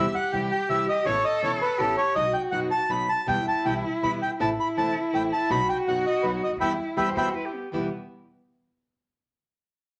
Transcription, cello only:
0, 0, Header, 1, 2, 480
1, 0, Start_track
1, 0, Key_signature, 1, "minor"
1, 0, Tempo, 369914
1, 1379, Time_signature, 3, 2, 24, 8
1, 12964, End_track
2, 0, Start_track
2, 0, Title_t, "Cello"
2, 0, Program_c, 0, 42
2, 0, Note_on_c, 0, 67, 121
2, 1379, Note_on_c, 0, 69, 123
2, 1399, Note_off_c, 0, 67, 0
2, 2315, Note_on_c, 0, 67, 106
2, 2335, Note_off_c, 0, 69, 0
2, 2792, Note_on_c, 0, 66, 108
2, 2811, Note_off_c, 0, 67, 0
2, 4010, Note_off_c, 0, 66, 0
2, 4256, Note_on_c, 0, 64, 108
2, 5661, Note_off_c, 0, 64, 0
2, 5702, Note_on_c, 0, 64, 107
2, 7143, Note_on_c, 0, 66, 117
2, 7162, Note_off_c, 0, 64, 0
2, 8570, Note_off_c, 0, 66, 0
2, 8581, Note_on_c, 0, 64, 98
2, 9043, Note_on_c, 0, 67, 89
2, 9063, Note_off_c, 0, 64, 0
2, 9279, Note_on_c, 0, 66, 93
2, 9298, Note_off_c, 0, 67, 0
2, 9532, Note_on_c, 0, 64, 83
2, 9551, Note_off_c, 0, 66, 0
2, 9786, Note_on_c, 0, 59, 69
2, 9805, Note_off_c, 0, 64, 0
2, 10009, Note_off_c, 0, 59, 0
2, 10017, Note_on_c, 0, 59, 74
2, 10248, Note_off_c, 0, 59, 0
2, 12964, End_track
0, 0, End_of_file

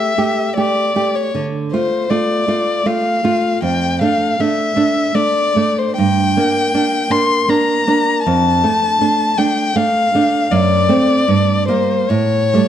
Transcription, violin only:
0, 0, Header, 1, 2, 480
1, 0, Start_track
1, 0, Key_signature, -1, "minor"
1, 0, Tempo, 768246
1, 833, Time_signature, 3, 2, 24, 8
1, 3219, Tempo, 825309
1, 3699, Tempo, 757576
1, 7059, Tempo, 818554
1, 7539, Tempo, 882353
1, 7855, End_track
2, 0, Start_track
2, 0, Title_t, "Violin"
2, 0, Program_c, 0, 40
2, 0, Note_on_c, 0, 76, 43
2, 338, Note_off_c, 0, 76, 0
2, 356, Note_on_c, 0, 74, 39
2, 720, Note_on_c, 0, 73, 32
2, 729, Note_off_c, 0, 74, 0
2, 837, Note_off_c, 0, 73, 0
2, 1079, Note_on_c, 0, 72, 37
2, 1309, Note_on_c, 0, 74, 35
2, 1319, Note_off_c, 0, 72, 0
2, 1787, Note_on_c, 0, 77, 46
2, 1796, Note_off_c, 0, 74, 0
2, 2266, Note_off_c, 0, 77, 0
2, 2269, Note_on_c, 0, 79, 40
2, 2505, Note_off_c, 0, 79, 0
2, 2510, Note_on_c, 0, 77, 40
2, 2750, Note_on_c, 0, 76, 45
2, 2759, Note_off_c, 0, 77, 0
2, 3217, Note_on_c, 0, 74, 48
2, 3226, Note_off_c, 0, 76, 0
2, 3586, Note_on_c, 0, 72, 37
2, 3595, Note_off_c, 0, 74, 0
2, 3697, Note_off_c, 0, 72, 0
2, 3700, Note_on_c, 0, 79, 52
2, 4418, Note_on_c, 0, 84, 51
2, 4427, Note_off_c, 0, 79, 0
2, 4660, Note_on_c, 0, 82, 46
2, 4669, Note_off_c, 0, 84, 0
2, 5135, Note_off_c, 0, 82, 0
2, 5139, Note_on_c, 0, 81, 52
2, 5851, Note_on_c, 0, 79, 46
2, 5861, Note_off_c, 0, 81, 0
2, 6095, Note_on_c, 0, 77, 54
2, 6104, Note_off_c, 0, 79, 0
2, 6569, Note_on_c, 0, 74, 51
2, 6578, Note_off_c, 0, 77, 0
2, 7290, Note_off_c, 0, 74, 0
2, 7293, Note_on_c, 0, 72, 42
2, 7534, Note_on_c, 0, 73, 50
2, 7542, Note_off_c, 0, 72, 0
2, 7855, Note_off_c, 0, 73, 0
2, 7855, End_track
0, 0, End_of_file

